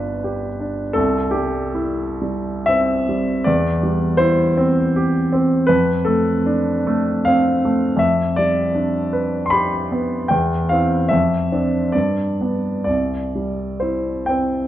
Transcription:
grand piano
Already playing: G1 G3 D4 F4 B4 D5
0.24 G4
0.60 D4
0.93 C2 A4
1.31 G3 G4
1.75 E4
2.22 G3
2.66 C4 E5
3.09 G3
3.44 E2 D5
3.83 G3
4.17 E4 C5
4.57 C4
4.96 G4
5.33 C4
5.67 F2 B4
6.05 A3 A4
6.46 D4
6.87 A3
7.25 C4 F5
7.65 A3
7.97 F2 E5
8.36 G3 D5
8.75 D4
9.13 B4
9.46 C6
9.50 G4 B5
9.92 B3
10.28 E2 G5
10.69 C4 E4 F5
11.09 F2 E5
11.52 C4 D4
11.92 G2 D5
12.41 B3 D4
12.84 C2 D5
13.35 G3
13.80 E4 C5
14.26 C4 G5

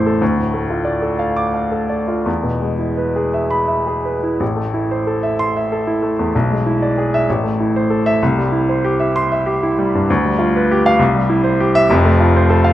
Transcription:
grand piano
Already playing: A1 E2 A3 E4 C5
0.06 A4
0.22 D2
0.37 A2
0.54 A3
0.70 F4
0.85 D5
1.02 A4
1.19 F5
1.36 D6
1.54 F5
1.71 A4
1.89 D5
2.08 F4
2.26 E2
2.43 B2
2.61 G#3
2.79 E4
2.97 B4
3.16 G#4
3.34 E5
3.51 B5
3.68 E5
3.87 G#4
4.05 B4
4.23 E4
4.40 A1
4.56 A3
4.74 E4
4.91 C5
5.07 A4
5.23 E5
5.39 C6
5.57 E5
5.72 A4
5.87 E4
6.02 A3
6.19 E2
6.35 B1
6.51 G#3
6.66 E4
6.82 D5
6.98 G#4
7.14 E5
7.30 A1
7.44 A3
7.60 E4
7.76 C5
7.90 A4
8.06 E5
8.23 C2
8.38 G3
8.52 E4
8.69 C5
8.85 G4
9.00 E5
9.16 C6
9.32 E5
9.46 G4
9.63 E4
9.79 G3
9.95 G2
10.10 D2
10.25 G3
10.39 F4
10.56 B4
10.71 G4
10.86 F5
10.99 C2
11.15 G3
11.29 E4
11.44 C5
11.60 G4
11.75 E5
11.90 F1 F2
12.05 A3
12.20 F4
12.36 C5
12.50 A4
12.64 F5

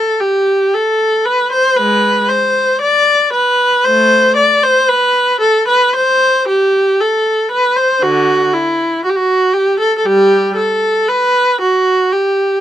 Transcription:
viola
Already playing: A4
0.20 G4
0.74 A4
1.25 B4
1.52 C5
1.76 G#3 B4
2.29 C5
2.81 D5
3.33 B4
3.84 A3 C5
4.37 D5
4.63 C5
4.89 B4
5.41 A4
5.68 B4
5.96 C5
6.48 G4
7.01 A4
7.52 B4
7.76 C5
8.02 D3 F#4
8.54 E4
9.04 F#4
9.10 G4
9.16 F#4
9.54 G4
9.80 A4
9.98 A4
10.05 G3 G4
10.56 A4
11.08 B4
11.61 F#4
12.12 G4

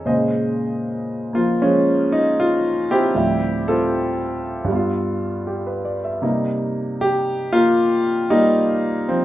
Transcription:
grand piano
0.05 A#2 C#3 G#3 C5 D#5
1.33 F3 A#3 F4
1.62 F3 G#3 C#4
2.12 D#4
2.40 F4
2.91 C4 E4 G4
3.14 D2 A2 F3 G3 C4 E5
3.68 C4 F4 A4
4.65 G2 G3
4.72 B3 F4
5.47 G4
5.67 B4
5.85 D5
6.04 E5
6.22 C3 G3 A#3 D#4
7.01 G4
7.53 A#3 F4
8.30 G3 A#3 D#4
9.08 F3 C4

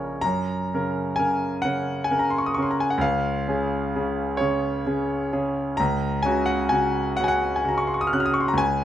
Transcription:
grand piano
Already playing: C#3 C#4 A#4 C#5
0.21 F#2 A#5
0.74 C#3 C#4 A#4
1.16 C#3 C#4 A#4 G#5
1.62 C#3 C#4 A#4 F#5
2.04 G#5
2.11 C#3 C#4 A#4
2.19 A#5
2.30 C6
2.38 C#6
2.46 D#6
2.54 C#3 C#4 C#6
2.59 A#4 C6
2.71 A#5
2.80 G#5
2.90 F#5
2.98 C#2 F5
3.48 C#3 C#4 G#4
3.95 C#3 C#4 G#4
4.37 C#3 C#4 G#4 C#5
4.86 C#3 C#4 G#4
5.33 C#3 C#4 G#4
5.77 C#2 A#5
6.23 C#3 C#4 F#4 G#5
6.46 F#5
6.69 C#3 C#4 F#4 G#5
7.17 C#3 C#4 F#4 F#5
7.24 G#5
7.28 F#5
7.56 G#5
7.65 C#3 C#4 F#4
7.69 A#5
7.78 C#6
7.87 C6
7.94 C#6
8.01 D#6
8.07 F6
8.13 C#3 C#4 F#4 F#6
8.20 F6
8.26 D#6
8.34 C#6
8.40 C6
8.48 A#5
8.53 C#2
8.58 G#5

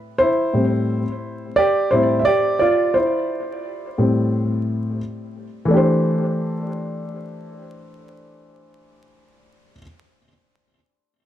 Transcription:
grand piano
Already playing: A2 G3 C4
0.18 E4 C5
0.53 A2 G3 C4
1.56 G4 D5
1.91 A2 G3 C4 E4 C5
2.19 E5
2.25 G4 D5
2.59 F4 D5
2.94 E4 C5
3.98 A2 G3 C4
5.65 E3 A3
5.71 D4 G4
5.77 C5

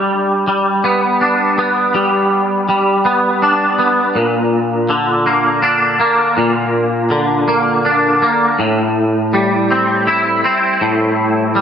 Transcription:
clean electric guitar
Already playing: G3 D4
0.47 G3
0.84 B3
1.21 D4
1.58 B3
1.94 G3
2.69 G3
3.05 B3
3.42 D4
3.78 B3
4.15 A#2
4.89 D3
5.26 A#3
5.62 D4
6.00 A#3
6.37 A#2
7.10 D3
7.48 A#3
7.85 D4
8.22 A#3
8.59 A2
9.33 G3
9.71 C4
10.07 E4
10.44 C4
10.81 A2
11.55 G3

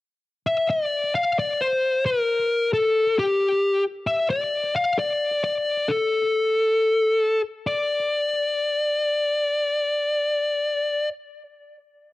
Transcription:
lead electric guitar
0.47 E5
0.70 D5
1.15 F5
1.39 D5
1.61 C5
2.05 A#4
2.73 A4
3.19 G4
4.07 E5
4.30 D5
4.76 F5
4.99 D5
5.44 D5
5.88 A4
7.67 D5

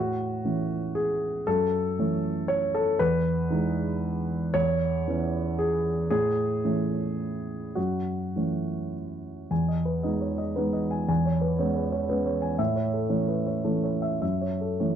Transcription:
grand piano
Already playing: A2 F#4
0.45 E3 A3 C#4
0.95 G#4
1.47 F#2 A4
1.99 E3 A3 C#4
2.48 C#5
2.75 A4
2.99 E2 B4
3.50 E3 G#3 D#4
4.54 E2 C#5
5.08 E3 B3 C#4
5.59 G#4
6.10 A2 G#4
6.64 E3 A3 C#4
7.75 F#2 F#4
8.36 E3 A3 C#4
9.51 E2 G#5
9.68 D#5
9.85 B4
10.03 G#3 B3 D#4 D#5
10.21 C#5
10.38 D#5
10.56 G#3 B3 D#4 B4
10.73 D#5
10.91 G#5
11.08 E2 G#5
11.25 C#5
11.41 B4
11.58 G#3 B3 C#4 C#5
11.76 B4
11.92 C#5
12.09 G#3 B3 C#4 B4
12.26 C#5
12.42 G#5
12.59 A2 E5
12.76 C#5
12.93 A4
13.09 E3 A3 C#4 C#5
13.28 B4
13.46 C#5
13.64 E3 A3 C#4 A4
13.83 C#5
14.02 E5
14.22 F#2 E5
14.42 C#5
14.61 A4
14.80 E3 A3 C#4 C#5

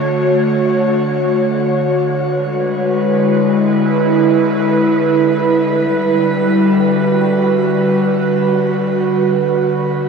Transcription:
analog synth pad
Already playing: D3 A3 F#4 C#5
2.17 B4
2.31 G#3
2.96 E4
5.65 G3
6.43 F#4
9.92 A3

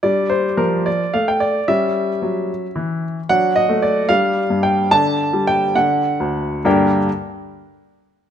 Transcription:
grand piano
0.03 G3 D4 D5
0.30 C5
0.57 F3 A#4
0.86 D5
1.14 A3 F5
1.28 G5
1.40 D5
1.68 G3 C#4 E5
2.22 F#3
2.76 E3
3.29 F#3 D4 F#5
3.56 D#5
3.69 A3
3.82 D5
4.09 G3 D4 F5
4.50 G2
4.63 G5
4.91 D3 D4 A5
5.33 G3
5.47 G5
5.75 D3 D4 F#5
6.20 D2
6.65 G2 D3 A#3 D4 G4 A#4 G5

